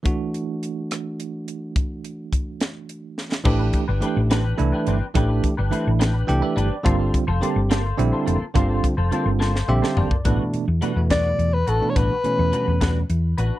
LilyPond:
<<
  \new Staff \with { instrumentName = "Soprano saxophone" } { \time 6/8 \key g \dorian \tempo 4. = 71 r2. | r2. | r2. | r2. |
r2. | r2. | r4. d''8. b'16 a'16. cis''32 | b'2 r4 | }
  \new Staff \with { instrumentName = "Clean electric guitar" } { \time 6/8 \key g \dorian r2. | r2. | <c' d' g' b'>16 <d' g' b'>16 r16 <d' g' b'>16 <c' d' g' b'>16 r16 <c' d' g' b'>16 <d' g' b'>16 r16 <d' g' b'>16 <c' d' g' b'>16 r16 | <c' d' g' b'>16 <d' g' b'>16 r16 <d' g' b'>16 <c' d' g' b'>16 r16 <c' d' g' b'>16 <d' g' b'>16 r16 <d' g' b'>16 <c' d' g' b'>16 r16 |
<bes f' a' c''>16 <f' a' c''>16 r16 <f' a' c''>16 <bes f' a' c''>16 r16 <bes f' a' c''>16 <f' a' c''>16 r16 <f' a' c''>16 <bes f' a' c''>16 r16 | <bes f' a' c''>16 <f' a' c''>16 r16 <f' a' c''>16 <bes f' a' c''>16 r16 <bes f' a' c''>16 <f' a' c''>16 r16 <f' a' c''>16 <bes f' a' c''>16 r16 | <g d' fis' b'>16 r8. <g d' fis' b'>16 r16 <g d' fis' b'>16 r8. <d' fis' b'>16 r16 | <g d' fis' b'>16 r8. <g d' fis' b'>16 r16 <g d' fis' b'>16 r8. <d' fis' b'>16 r16 | }
  \new Staff \with { instrumentName = "Tine electric piano" } { \time 6/8 \key g \dorian r2. | r2. | r2. | r2 g''16 e''16 d''8 |
r2. | r2 e''8 d''8 | r2. | r2. | }
  \new Staff \with { instrumentName = "Tine electric piano" } { \time 6/8 \key g \dorian <e a d' fis'>2.~ | <e a d' fis'>2. | <e a d' g'>8. r16 <e a d' g'>8. r16 <e a d' e'>8. r16 | <e a d' g'>8. r16 <e a d' e'>8. r16 <e a d' g'>8. r16 |
<d g c' f'>8. r16 <d g c' g'>8. r16 <d g c' e'>8. r16 | <d g c' f'>8. r16 <d g c' f'>8. r16 <d g c' g'>8. r16 | <b, e a d'>8. r16 <b, e a d'>16 <b, e a b>4 r8 <b, e a d'>16~ | <b, e a d'>16 r16 <b, e a cis'>4~ <b, e a cis'>16 r4 r16 | }
  \new Staff \with { instrumentName = "Fingered electric bass" } { \clef bass \time 6/8 \key g \dorian r2. | r2. | a,,8 r16 g,,16 r16 a,,8. c,16 r16 g,,16 r16 | a,,8 r16 g,,16 r16 a,,8. c,16 r16 g,,16 r16 |
g,,8 r16 f,,16 r16 g,,8. bes,,16 r16 f,,16 r16 | g,,8 r16 f,,16 r16 g,,8. bes,,16 r16 f,,16 r16 | a,,16 r8 e,16 r16 e,8. e,8 a,,16 r16 | a,,16 r8 e,16 r16 e,8. e,8 a,,16 r16 | }
  \new DrumStaff \with { instrumentName = "Drums" } \drummode { \time 6/8 <hh bd>8 hh8 hh8 <hh ss>8 hh8 hh8 | <hh bd>8 hh8 <hh bd>8 <hh sn>8 hh8 sn16 sn16 | <cymc bd>8 <hh bd>8 hh8 <hh sn>8 hh8 hh8 | <hh bd>8 <hh bd>8 hh8 <hh sn>8 hh8 hh8 |
<hh bd>8 <hh bd>8 hh8 <hh sn>8 hh8 hh8 | <hh bd>8 <hh bd>8 hh8 sn16 sn8 sn16 tomfh16 bd16 | <hh bd>8 hh8 hh8 <hh bd sn>8 hh8 hh8 | <hh bd>8 hh8 hh8 <hh bd sn>8 hh8 hh8 | }
>>